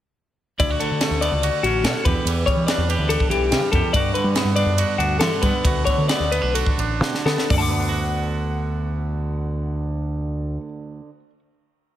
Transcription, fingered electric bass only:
0.59 0.77 D2 medium
0.91 0.99 D3 medium
1.11 1.28 D2 medium
1.32 1.49 C#2 medium
1.63 1.85 A1 medium
1.83 1.93 B2 medium
2.05 2.14 E2 medium
2.25 2.43 E2 loud
2.56 2.66 E3 medium
2.78 2.95 E2 medium
2.98 3.16 D2 medium
3.29 3.53 B1 medium
3.51 3.60 C#3 medium
3.73 3.82 F#2 loud
3.94 4.11 G2 medium
4.24 4.33 G3 medium
4.44 4.63 G2 medium
4.66 4.84 F#2 medium
4.98 5.21 D2 medium
5.21 5.30 E3 medium
5.42 5.51 G3 medium
5.64 5.83 D2 medium
5.98 6.07 D3 medium
6.20 6.39 D2 medium
6.43 6.62 B1 medium
6.77 7.01 A1 medium
7.01 7.11 B2 medium
7.25 7.36 D3 loud
7.50 10.56 D2 medium

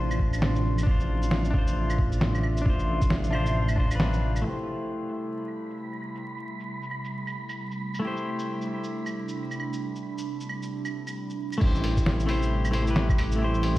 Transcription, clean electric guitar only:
0.00 0.82 D4 medium
0.00 0.85 F4 medium
0.00 0.87 C5 medium
0.83 1.49 D4 medium
0.87 1.52 F4 medium
0.87 1.54 C5 medium
1.50 2.60 D4 medium
1.50 2.64 F4 medium
1.58 2.66 C5 medium
2.62 3.29 D4 medium
2.62 3.31 F4 medium
2.70 3.33 C5 medium
3.31 3.75 D4 medium
3.31 3.76 F4 medium
3.35 3.77 C5 medium
3.76 3.86 D4 medium
3.76 3.88 F4 medium
3.80 3.89 C5 loud
3.87 4.41 D4 medium
3.87 4.43 F4 medium
3.95 4.45 B4 medium
4.41 7.98 A3 medium
4.41 8.01 E4 medium
4.47 8.02 G4 medium
4.47 8.03 C5 medium
7.99 11.56 A3 medium
7.99 11.59 E4 medium
8.05 11.60 G4 medium
8.05 11.61 C5 medium
11.58 12.25 A3 medium
11.58 12.26 E4 medium
11.63 12.27 G4 medium
11.63 12.28 C5 medium
12.26 12.70 A3 medium
12.26 12.71 E4 medium
12.26 12.72 G4 medium
12.30 12.72 C5 loud
12.71 12.81 A3 medium
12.71 12.83 E4 medium
12.71 12.84 G4 medium
12.71 12.84 C5 loud
12.82 13.35 A3 medium
12.82 13.37 E4 medium
12.88 13.39 G4 medium
12.88 13.40 B4 medium
13.36 13.78 A3 medium
13.36 13.78 E4 medium
13.42 13.78 G4 medium
13.42 13.78 C5 medium

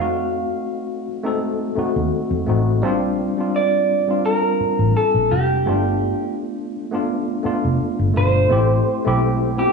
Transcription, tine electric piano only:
0.00 1.06 A3 medium
0.00 1.07 C4 medium
0.00 1.07 D#4 medium
0.00 1.08 F#4 medium
1.23 1.69 A3 medium
1.23 1.70 C4 medium
1.23 1.70 D#4 medium
1.23 1.71 A4 medium
1.76 2.38 A3 medium
1.76 2.39 C4 medium
1.76 2.40 D#4 medium
1.76 2.40 F#4 medium
2.46 2.78 A3 medium
2.46 2.79 C4 medium
2.46 2.80 D#4 medium
2.46 2.80 F#4 medium
2.82 3.30 G3 loud
2.82 3.30 C4 loud
2.82 3.31 D4 medium
2.82 3.31 F4 loud
3.37 3.98 G3 medium
3.37 3.99 C4 medium
3.37 3.99 D4 medium
3.37 4.00 F4 medium
4.08 5.30 G3 medium
4.08 5.30 C4 medium
4.08 5.31 D4 medium
4.08 5.31 F4 medium
5.66 6.74 A3 medium
5.66 6.75 B3 medium
5.66 6.75 D4 medium
5.66 6.76 F4 medium
6.91 7.37 A3 medium
6.91 7.38 B3 medium
6.91 7.38 D4 medium
6.91 7.39 F4 medium
7.43 8.06 A3 medium
7.43 8.06 B3 medium
7.43 8.07 D4 medium
7.43 8.07 F4 medium
8.14 8.46 B2 medium
8.14 8.46 A3 medium
8.14 8.47 D4 medium
8.14 8.47 F4 medium
8.49 8.97 A3 medium
8.49 8.97 C4 medium
8.49 8.98 E4 medium
8.49 8.98 G4 medium
9.04 9.50 A3 medium
9.04 9.51 C4 medium
9.04 9.51 E4 medium
9.04 9.52 G4 medium
9.56 9.72 B3 medium
9.56 9.72 C4 medium
9.56 9.72 E4 medium
9.56 9.65 F4 medium
9.66 9.72 G4 medium

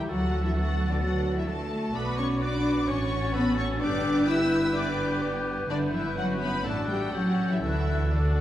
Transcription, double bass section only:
0.10 1.91 D2 medium
1.95 2.84 B1 medium
2.88 3.79 A1 medium
3.81 5.68 G1 medium
5.69 6.61 G1 medium
6.66 7.12 A1 medium
7.13 7.62 A1 medium
7.63 8.41 D2 medium

